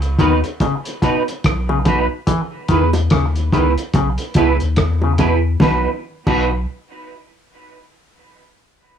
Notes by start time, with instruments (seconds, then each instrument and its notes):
Already playing: sub bass C#2
0.02 closed hi-hat
0.19 sub bass D#2, clav D#3, clean electric guitar B3 D#4 F#4 B4, kick, closed hi-hat, high bongo
0.44 muted clean electric guitar stroke, closed hi-hat
0.60 clav C#3, kick, closed hi-hat, high bongo
0.85 closed hi-hat
1.02 clav B2, clean electric guitar B3 D#4 F#4 B4, kick, closed hi-hat, high bongo
1.28 closed hi-hat
1.44 sub bass B1, kick, cross-stick, closed hi-hat
1.69 clav C#3, high bongo
1.85 clav B2, clean electric guitar B3 D#4 F#4 B4, kick, closed hi-hat, low bongo
2.27 clav E3, kick, closed hi-hat, high bongo
2.68 sub bass E2, clav D#3, clean electric guitar B3 E4 G#4 B4, kick, closed hi-hat
2.93 closed hi-hat, high bongo
3.10 sub bass D#2, clav C#3, kick, cross-stick, closed hi-hat
3.36 closed hi-hat
3.53 sub bass C#2, clav D#3, clean electric guitar B3 E4 G#4 B4, kick, closed hi-hat, high bongo
3.78 muted clean electric guitar stroke, closed hi-hat
3.94 sub bass B1, clav C#3, kick, closed hi-hat, high bongo
4.18 closed hi-hat
4.34 sub bass C#2, clav B2, clean electric guitar B3 E4 G#4 B4, kick, closed hi-hat, high bongo
4.60 sub bass D#2, closed hi-hat
4.76 sub bass E2, kick, cross-stick, closed hi-hat
5.01 clav C#3, high bongo
5.18 clav B2, clean electric guitar B3 E4 G#4 B4, kick, closed hi-hat, low bongo
5.60 sub bass B1, clav B2, clean electric guitar B3 D#4 F#4 B4, kick, snare, high bongo
6.27 sub bass B1, clav B2, clean electric guitar B3 D#4 F#4 B4, kick, crash, high bongo